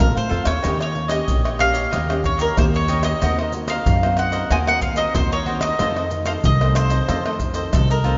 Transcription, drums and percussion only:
0.00 pandeiro medium
0.00 tamborim medium
0.00 maracas medium
0.00 surdo loud
0.17 pandeiro soft
0.17 maracas soft
0.31 pandeiro medium
0.45 pandeiro medium
0.45 tamborim medium
0.45 maracas medium
0.64 pandeiro medium
0.64 tamborim medium
0.64 maracas medium
0.64 surdo medium
0.81 pandeiro soft
0.81 tamborim medium
0.81 maracas soft
0.95 pandeiro medium
1.09 pandeiro medium
1.09 tamborim medium
1.09 maracas medium
1.28 pandeiro medium
1.28 maracas medium
1.28 surdo loud
1.45 pandeiro soft
1.45 tamborim medium
1.45 maracas soft
1.59 pandeiro medium
1.59 tamborim medium
1.74 pandeiro medium
1.74 maracas medium
1.93 pandeiro medium
1.93 tamborim medium
1.93 maracas medium
1.93 surdo medium
2.10 pandeiro soft
2.10 tamborim medium
2.10 maracas soft
2.24 pandeiro medium
2.24 surdo medium
2.39 pandeiro medium
2.39 maracas medium
2.57 pandeiro medium
2.57 tamborim medium
2.57 maracas medium
2.57 surdo loud
2.74 pandeiro soft
2.74 maracas soft
2.88 pandeiro medium
2.88 maracas medium
3.03 pandeiro medium
3.03 tamborim medium
3.03 maracas loud
3.22 pandeiro medium
3.22 tamborim medium
3.22 maracas medium
3.22 surdo medium
3.39 pandeiro soft
3.39 tamborim medium
3.39 maracas soft
3.52 pandeiro medium
3.52 maracas medium
3.68 pandeiro medium
3.68 tamborim medium
3.68 maracas medium
3.86 pandeiro medium
3.86 maracas medium
3.86 surdo medium
4.03 pandeiro soft
4.03 tamborim medium
4.03 maracas soft
4.17 pandeiro medium
4.17 tamborim medium
4.32 pandeiro medium
4.32 maracas medium
4.51 pandeiro medium
4.51 tamborim medium
4.51 maracas medium
4.51 surdo medium
4.67 pandeiro soft
4.67 tamborim medium
4.67 maracas soft
4.81 pandeiro medium
4.81 maracas medium
4.81 surdo medium
4.96 pandeiro medium
4.96 maracas medium
5.15 pandeiro medium
5.15 tamborim medium
5.15 maracas medium
5.15 surdo loud
5.32 pandeiro soft
5.32 maracas soft
5.46 pandeiro medium
5.61 pandeiro medium
5.61 tamborim medium
5.61 maracas medium
5.79 pandeiro medium
5.79 tamborim medium
5.79 maracas medium
5.79 surdo medium
5.96 pandeiro soft
5.96 tamborim medium
5.96 maracas soft
6.11 pandeiro medium
6.11 maracas medium
6.26 pandeiro medium
6.26 tamborim medium
6.26 maracas medium
6.44 pandeiro medium
6.44 maracas medium
6.44 surdo loud
6.61 pandeiro soft
6.61 tamborim medium
6.61 maracas soft
6.75 pandeiro medium
6.75 tamborim medium
6.75 maracas medium
6.90 pandeiro medium
6.90 maracas medium
7.08 pandeiro medium
7.08 tamborim medium
7.08 maracas medium
7.08 surdo medium
7.26 pandeiro soft
7.26 tamborim medium
7.26 maracas soft
7.40 pandeiro medium
7.40 maracas medium
7.40 surdo medium
7.54 pandeiro medium
7.54 maracas medium
7.73 pandeiro medium
7.73 tamborim medium
7.73 maracas medium
7.73 surdo loud
7.90 pandeiro soft
7.90 maracas soft
8.04 pandeiro medium

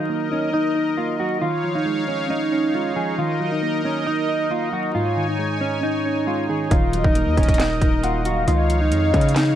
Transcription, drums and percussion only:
6.71 kick loud
6.71 closed hi-hat medium
6.93 closed hi-hat medium
7.04 kick loud
7.15 closed hi-hat medium
7.37 kick medium
7.37 closed hi-hat soft
7.43 closed hi-hat medium
7.48 kick loud
7.48 closed hi-hat medium
7.54 closed hi-hat medium
7.59 snare loud
7.59 clap medium
7.59 closed hi-hat medium
7.82 kick loud
7.82 closed hi-hat medium
8.04 closed hi-hat medium
8.25 closed hi-hat medium
8.48 closed hi-hat medium
8.70 closed hi-hat medium
8.92 closed hi-hat medium
9.14 kick medium
9.14 closed hi-hat soft
9.21 closed hi-hat medium
9.29 closed hi-hat medium
9.36 snare loud
9.36 clap medium
9.36 closed hi-hat medium

